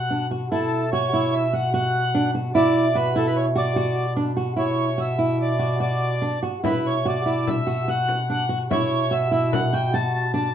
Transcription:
Already playing: bass clarinet B2, accordion F#5
0.10 nylon-string guitar D4
0.31 nylon-string guitar F#4
0.52 bass clarinet B2, nylon-string guitar E4, accordion A4
0.92 nylon-string guitar F#4, accordion C#5
1.13 nylon-string guitar E4
1.33 accordion E5
1.53 nylon-string guitar F#4, accordion F#5
1.74 nylon-string guitar F#4, accordion F#5
2.15 nylon-string guitar D4
2.35 nylon-string guitar F#4
2.55 bass clarinet B2, nylon-string guitar E4, accordion D5
2.95 nylon-string guitar F#4, accordion B4
3.15 nylon-string guitar E4, accordion A4
3.27 accordion B4
3.37 accordion C#5
3.55 nylon-string guitar F#4, accordion D5
3.76 nylon-string guitar F#4
4.16 nylon-string guitar D4
4.37 nylon-string guitar F#4
4.56 bass clarinet B2, nylon-string guitar E4, accordion C#5
4.98 nylon-string guitar F#4, accordion E5
5.18 nylon-string guitar E4
5.42 accordion D5
5.59 nylon-string guitar F#4
5.80 nylon-string guitar F#4, accordion D5
6.22 nylon-string guitar D4
6.43 nylon-string guitar F#4
6.64 bass clarinet B2, nylon-string guitar E4, accordion B4, frame drum
6.86 accordion C#5
7.05 nylon-string guitar F#4, accordion D5, frame drum
7.26 nylon-string guitar E4
7.47 accordion E5, frame drum
7.67 nylon-string guitar F#4
7.88 nylon-string guitar F#4, accordion F#5
8.09 frame drum
8.30 nylon-string guitar D4, accordion F#5
8.49 nylon-string guitar F#4
8.71 bass clarinet B2, nylon-string guitar E4, accordion C#5, frame drum
9.11 nylon-string guitar F#4, accordion E5, frame drum
9.31 nylon-string guitar E4, accordion E5
9.53 accordion F#5, frame drum
9.73 nylon-string guitar F#4, accordion G5
9.94 nylon-string guitar F#4, accordion A5
10.14 accordion A5
10.33 nylon-string guitar D4, accordion A5

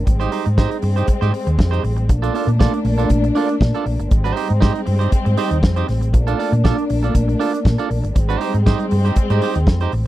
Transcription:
0.07 fingered electric bass G#1, string section G3 G#3 C4, muted clean electric guitar stroke, kick, closed hi-hat
0.20 clean electric guitar D#4 G4 C5, closed hi-hat
0.32 clean electric guitar D#4 G4 C5, open hi-hat
0.46 fingered electric bass G#2, muted clean electric guitar stroke, closed hi-hat
0.58 clean electric guitar D#4 G4 C5, kick, snare
0.71 muted clean electric guitar stroke, closed hi-hat
0.82 fingered electric bass G2, muted clean electric guitar stroke, open hi-hat
0.96 clean electric guitar D#4 G4 C5, closed hi-hat
1.07 muted clean electric guitar stroke, muted fingered electric bass stroke, kick, closed hi-hat
1.21 fingered electric bass G#2, clean electric guitar D#4 G4 C5, closed hi-hat
1.33 muted clean electric guitar stroke, open hi-hat
1.47 fingered electric bass D#2, muted clean electric guitar stroke, closed hi-hat
1.59 fingered electric bass F2, muted clean electric guitar stroke, kick, snare
1.71 clean electric guitar D#4 G4 C5, closed hi-hat
1.83 fingered electric bass A1, muted clean electric guitar stroke, open hi-hat
1.97 muted clean electric guitar stroke, closed hi-hat
2.09 fingered electric bass A#1, string section A3 A#3 D4, muted clean electric guitar stroke, kick, closed hi-hat
2.22 clean electric guitar D4 F4 A4, closed hi-hat
2.34 clean electric guitar D4 F4 A4, open hi-hat
2.47 fingered electric bass A#2, muted clean electric guitar stroke, closed hi-hat
2.59 clean electric guitar D4 F4 A4, kick, snare
2.74 muted clean electric guitar stroke, closed hi-hat
2.85 fingered electric bass A#1, muted clean electric guitar stroke, open hi-hat
2.98 clean electric guitar D4 F4 A4, closed hi-hat
3.10 fingered electric bass A#1, kick, closed hi-hat
3.24 muted clean electric guitar stroke, closed hi-hat
3.35 clean electric guitar D4 F4 A4, open hi-hat
3.49 muted clean electric guitar stroke, closed hi-hat
3.61 fingered electric bass A#2, muted clean electric guitar stroke, kick, snare
3.75 clean electric guitar D4 F4 A4, closed hi-hat
3.86 fingered electric bass A#1, muted clean electric guitar stroke, open hi-hat
3.99 fingered electric bass G1, muted clean electric guitar stroke, closed hi-hat
4.11 fingered electric bass G#1, string section G3 G#3 C4, muted clean electric guitar stroke, kick, closed hi-hat
4.24 clean electric guitar D#4 G4 C5, closed hi-hat
4.36 clean electric guitar D#4 G4 C5, open hi-hat
4.49 fingered electric bass G#2, muted clean electric guitar stroke, closed hi-hat
4.60 clean electric guitar D#4 G4 C5, kick, snare
4.74 muted clean electric guitar stroke, closed hi-hat
4.86 fingered electric bass G2, muted clean electric guitar stroke, open hi-hat
4.99 clean electric guitar D#4 G4 C5, closed hi-hat
5.12 muted clean electric guitar stroke, muted fingered electric bass stroke, kick, closed hi-hat
5.25 fingered electric bass G#2, muted clean electric guitar stroke, closed hi-hat
5.37 clean electric guitar D#4 G4 C5, open hi-hat
5.51 fingered electric bass D#2, muted clean electric guitar stroke, closed hi-hat
5.63 fingered electric bass F2, muted clean electric guitar stroke, kick, snare
5.76 clean electric guitar D#4 G4 C5, closed hi-hat
5.89 fingered electric bass A1, snare, open hi-hat
6.01 muted clean electric guitar stroke, closed hi-hat
6.13 fingered electric bass A#1, string section A3 A#3 D4, muted clean electric guitar stroke, kick, closed hi-hat
6.27 clean electric guitar D4 F4 A4, closed hi-hat
6.39 clean electric guitar D4 F4 A4, open hi-hat
6.52 fingered electric bass A#2, muted clean electric guitar stroke, closed hi-hat
6.64 clean electric guitar D4 F4 A4, kick, snare
6.77 muted clean electric guitar stroke, closed hi-hat
6.90 fingered electric bass A#1, muted clean electric guitar stroke, open hi-hat
7.03 clean electric guitar D4 F4 A4, closed hi-hat
7.15 fingered electric bass A#1, muted clean electric guitar stroke, kick, closed hi-hat
7.28 muted clean electric guitar stroke, closed hi-hat
7.40 clean electric guitar D4 F4 A4, open hi-hat
7.53 muted clean electric guitar stroke, closed hi-hat
7.65 fingered electric bass A#2, muted clean electric guitar stroke, kick, snare
7.78 clean electric guitar D4 F4 A4, closed hi-hat
7.91 fingered electric bass A#1, open hi-hat
8.03 fingered electric bass G1, muted clean electric guitar stroke, closed hi-hat
8.16 fingered electric bass G#1, string section G3 G#3 C4, muted clean electric guitar stroke, kick, closed hi-hat
8.29 clean electric guitar D#4 G4 C5, closed hi-hat
8.40 clean electric guitar D#4 G4 C5, open hi-hat
8.54 fingered electric bass G#2, muted clean electric guitar stroke, closed hi-hat
8.66 clean electric guitar D#4 G4 C5, kick, snare
8.80 muted clean electric guitar stroke, closed hi-hat
8.91 fingered electric bass G2, muted clean electric guitar stroke, open hi-hat
9.05 clean electric guitar D#4 G4 C5, closed hi-hat
9.16 muted fingered electric bass stroke, muted clean electric guitar stroke, kick, closed hi-hat
9.30 fingered electric bass G#2, clean electric guitar D#4 G4 C5, closed hi-hat
9.42 clean electric guitar D#4 G4 C5, open hi-hat
9.55 fingered electric bass D#2, muted clean electric guitar stroke, closed hi-hat
9.67 fingered electric bass F2, muted clean electric guitar stroke, kick, snare
9.80 clean electric guitar D#4 G4 C5, closed hi-hat
9.92 fingered electric bass A1, muted clean electric guitar stroke, open hi-hat

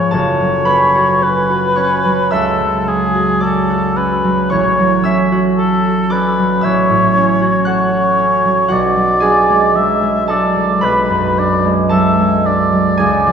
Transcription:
Already playing: harp G#2 F3 C#4 F4 G#4 A4 B4 G#5 B5, oboe C#5
0.11 harp F#1 A4 A5, oboe C#5
0.41 harp F#3
0.65 harp C#4 B4 B5
0.95 harp F#4
1.22 harp C#4, oboe B4
1.50 harp F#4
1.76 harp C#4 C#5 C#6
2.05 harp F#3
2.31 harp C#2 E5 E6, oboe A4
2.60 harp F#3
2.88 harp C#4, oboe G#4
3.15 harp F#4
3.40 harp C#4 D5 D6, oboe A4
3.70 harp F#4
3.96 harp C#4, oboe B4
4.24 harp F#3
4.50 harp A1 C#5 C#6, oboe C#5
4.79 harp F#3
5.03 harp C#4 E5 E6
5.32 harp F#4
5.57 oboe A4, harp A4
5.86 harp F#4
6.10 harp C#4 D5 D6, oboe B4
6.39 harp F#3
6.61 harp A1 E5 E6, oboe C#5
6.90 harp A2
7.16 harp C#4
7.41 harp F#4
7.65 harp A4 F#5 F#6, oboe C#5
7.92 harp F#4
8.19 harp C#4
8.45 harp F#3
8.68 harp B1 F#4 F#5, oboe D5
8.96 harp F#3
9.20 harp D4 G#4 G#5
9.49 harp G#3
9.76 harp F#3, oboe E5
10.03 harp G#3
10.28 harp D4 A4 A5, oboe D5
10.56 harp F#3
10.81 harp B1 B4 B5, oboe B4
11.10 harp F#2
11.37 harp D4, oboe D5
11.65 harp G#3
11.89 harp F#3 A4 A5, oboe E5
12.19 harp G#3
12.46 harp D4, oboe D5
12.72 harp F#3
12.97 harp C#2 G#4 G#5
13.27 harp F3

